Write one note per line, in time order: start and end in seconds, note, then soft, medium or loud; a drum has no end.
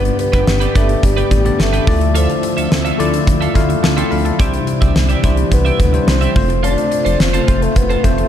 0.00 0.11 G1 loud
0.00 0.71 G2 medium
0.00 4.36 D3 medium
0.00 0.18 B3 loud
0.00 0.59 B3 medium
0.00 1.86 B3 medium
0.00 0.59 D4 medium
0.00 0.59 G4 medium
0.00 1.86 G4 medium
0.00 0.60 D5 medium
0.05 muted clean electric guitar stroke soft
0.05 closed hi-hat medium
0.19 0.78 B3 loud
0.19 muted clean electric guitar stroke soft
0.19 closed hi-hat medium
0.32 0.43 G1 medium
0.32 0.46 D4 medium
0.32 0.46 G4 medium
0.32 0.47 B4 medium
0.32 kick medium
0.32 closed hi-hat medium
0.47 0.68 G1 medium
0.47 muted clean electric guitar stroke soft
0.47 snare loud
0.60 0.74 D4 medium
0.60 0.74 G4 medium
0.60 0.75 B4 medium
0.60 closed hi-hat medium
0.75 0.96 G1 loud
0.75 1.07 A3 medium
0.75 1.32 B3 medium
0.75 1.32 D4 medium
0.75 0.90 D4 medium
0.75 1.32 G4 medium
0.75 0.89 G4 medium
0.75 0.88 B4 medium
0.75 1.32 D5 medium
0.75 kick medium
0.75 closed hi-hat medium
0.89 muted clean electric guitar stroke soft
0.89 closed hi-hat medium
1.03 1.24 G1 loud
1.03 1.62 G3 loud
1.03 muted clean electric guitar stroke soft
1.03 kick medium
1.03 closed hi-hat medium
1.17 1.30 D4 medium
1.17 1.30 G4 medium
1.17 1.31 B4 loud
1.17 closed hi-hat soft
1.31 1.51 A1 medium
1.31 kick medium
1.31 closed hi-hat medium
1.45 1.51 A3 medium
1.45 1.87 D4 medium
1.45 1.87 G4 medium
1.45 1.87 D5 medium
1.45 muted clean electric guitar stroke soft
1.45 closed hi-hat soft
1.51 1.90 B3 medium
1.59 1.80 G1 medium
1.59 2.16 A3 medium
1.59 muted clean electric guitar stroke soft
1.59 snare loud
1.73 1.93 D4 medium
1.73 1.86 G4 medium
1.73 1.87 B4 medium
1.73 closed hi-hat medium
1.87 2.28 D2 loud
1.87 2.68 D3 medium
1.87 4.38 F3 medium
1.87 2.78 A3 medium
1.87 2.78 E4 medium
1.87 2.78 F4 medium
1.87 2.79 D5 medium
1.87 4.37 E5 medium
1.87 muted clean electric guitar stroke soft
1.87 kick loud
1.87 open hi-hat medium
2.01 muted clean electric guitar stroke soft
2.01 closed hi-hat medium
2.15 2.96 F3 medium
2.15 2.34 F4 medium
2.15 2.29 A4 medium
2.15 2.28 E5 medium
2.15 closed hi-hat medium
2.29 muted clean electric guitar stroke soft
2.29 closed hi-hat medium
2.43 muted clean electric guitar stroke soft
2.43 closed hi-hat medium
2.57 2.68 D2 medium
2.57 2.70 F4 medium
2.57 2.70 A4 medium
2.57 2.71 E5 medium
2.57 closed hi-hat medium
2.71 2.92 D2 medium
2.71 muted clean electric guitar stroke soft
2.71 snare loud
2.85 2.98 F4 medium
2.85 2.98 A4 medium
2.85 2.99 E5 medium
2.85 closed hi-hat medium
2.99 3.20 D2 medium
2.99 3.44 A3 medium
2.99 3.45 E4 medium
2.99 3.14 F4 medium
2.99 3.45 F4 medium
2.99 3.13 A4 medium
2.99 3.45 D5 loud
2.99 3.12 E5 medium
2.99 closed hi-hat medium
3.13 muted clean electric guitar stroke soft
3.13 closed hi-hat medium
3.27 3.48 D2 medium
3.27 muted clean electric guitar stroke soft
3.27 kick medium
3.27 closed hi-hat medium
3.41 3.54 F4 medium
3.41 3.55 A4 medium
3.41 3.55 E5 medium
3.41 closed hi-hat soft
3.54 3.76 D2 medium
3.54 4.23 A3 medium
3.54 4.23 E4 medium
3.54 4.23 F4 medium
3.54 3.84 F5 medium
3.54 muted clean electric guitar stroke soft
3.54 kick medium
3.54 closed hi-hat medium
3.69 muted clean electric guitar stroke soft
3.69 closed hi-hat soft
3.83 4.04 D2 loud
3.83 3.97 E5 soft
3.83 3.97 A5 medium
3.83 muted clean electric guitar stroke soft
3.83 snare loud
3.97 4.10 F4 medium
3.97 4.10 A4 medium
3.97 4.11 E5 medium
3.97 4.11 G5 medium
3.97 4.11 C6 medium
3.97 closed hi-hat medium
4.11 4.32 D2 medium
4.11 4.25 F5 medium
4.11 4.25 B5 medium
4.11 muted clean electric guitar stroke soft
4.11 open hi-hat medium
4.25 4.53 E5 medium
4.25 4.52 A5 medium
4.25 muted clean electric guitar stroke soft
4.25 closed hi-hat medium
4.39 4.60 C2 loud
4.39 5.20 C3 medium
4.39 6.34 C3 medium
4.39 6.34 E3 medium
4.39 5.08 G3 medium
4.39 5.08 D4 medium
4.39 6.34 D4 medium
4.39 5.08 E4 medium
4.39 4.58 G4 medium
4.39 5.08 C5 loud
4.39 4.53 D5 medium
4.39 4.52 E5 medium
4.39 kick loud
4.39 closed hi-hat medium
4.53 muted clean electric guitar stroke soft
4.53 closed hi-hat medium
4.67 muted clean electric guitar stroke soft
4.67 closed hi-hat medium
4.81 4.92 C2 medium
4.81 4.94 G4 soft
4.81 4.94 D5 medium
4.81 4.95 E5 medium
4.81 kick loud
4.81 closed hi-hat medium
4.95 5.16 C2 loud
4.95 muted clean electric guitar stroke soft
4.95 snare loud
5.09 5.22 G4 medium
5.09 5.23 D5 medium
5.09 5.23 E5 medium
5.09 closed hi-hat medium
5.23 5.44 C2 loud
5.23 5.80 G3 medium
5.23 5.51 G3 medium
5.23 5.81 D4 medium
5.23 5.81 E4 medium
5.23 5.38 G4 medium
5.23 5.81 C5 medium
5.23 5.37 D5 medium
5.23 5.36 E5 medium
5.23 kick medium
5.23 closed hi-hat medium
5.37 muted clean electric guitar stroke soft
5.37 closed hi-hat medium
5.51 5.72 C2 loud
5.51 6.11 B3 loud
5.51 muted clean electric guitar stroke soft
5.51 kick medium
5.51 closed hi-hat medium
5.65 5.78 G4 medium
5.65 5.78 D5 medium
5.65 5.79 E5 medium
5.65 closed hi-hat soft
5.79 6.00 D2 medium
5.79 muted clean electric guitar stroke soft
5.79 kick medium
5.79 closed hi-hat medium
5.93 6.36 G3 medium
5.93 6.36 D4 medium
5.93 6.36 E4 medium
5.93 6.35 C5 medium
5.93 muted clean electric guitar stroke soft
5.93 closed hi-hat soft
6.07 6.28 C2 loud
6.07 6.64 C4 loud
6.07 muted clean electric guitar stroke soft
6.07 snare loud
6.21 6.35 G4 medium
6.21 6.36 D5 medium
6.21 6.40 E5 medium
6.21 closed hi-hat medium
6.35 6.76 F1 medium
6.35 8.28 C3 medium
6.35 7.27 A3 medium
6.35 8.28 A3 medium
6.35 7.27 C4 medium
6.35 8.28 F4 medium
6.35 7.27 F4 medium
6.35 7.27 C5 medium
6.35 muted clean electric guitar stroke soft
6.35 kick loud
6.35 open hi-hat medium
6.49 muted clean electric guitar stroke soft
6.49 closed hi-hat medium
6.63 7.22 D4 loud
6.63 6.82 F4 medium
6.63 6.77 A4 medium
6.63 6.76 C5 medium
6.63 closed hi-hat medium
6.77 muted clean electric guitar stroke soft
6.77 closed hi-hat medium
6.91 muted clean electric guitar stroke soft
6.91 closed hi-hat medium
7.05 7.16 F1 medium
7.05 7.18 F4 soft
7.05 7.19 A4 medium
7.05 7.19 C5 medium
7.05 closed hi-hat medium
7.19 7.40 F1 medium
7.19 7.64 C4 loud
7.19 muted clean electric guitar stroke soft
7.19 snare loud
7.33 7.46 F4 medium
7.33 7.47 A4 medium
7.33 7.48 C5 medium
7.33 closed hi-hat medium
7.47 7.68 F1 medium
7.47 7.93 A3 medium
7.47 7.94 C4 medium
7.47 7.62 F4 medium
7.47 7.94 F4 medium
7.47 7.62 A4 medium
7.47 7.60 C5 medium
7.47 7.94 C5 medium
7.47 kick medium
7.47 closed hi-hat medium
7.62 7.78 A3 medium
7.62 muted clean electric guitar stroke soft
7.62 closed hi-hat medium
7.76 7.96 F1 loud
7.76 8.05 B3 medium
7.76 muted clean electric guitar stroke soft
7.76 kick medium
7.76 closed hi-hat medium
7.90 8.03 F4 medium
7.90 8.03 A4 medium
7.90 8.04 C5 medium
7.90 closed hi-hat soft
8.04 8.24 F1 medium
8.04 8.28 A3 medium
8.04 8.28 C4 medium
8.04 8.28 F4 medium
8.04 8.28 C5 medium
8.04 muted clean electric guitar stroke soft
8.04 kick medium
8.04 closed hi-hat medium
8.18 muted clean electric guitar stroke soft
8.18 closed hi-hat soft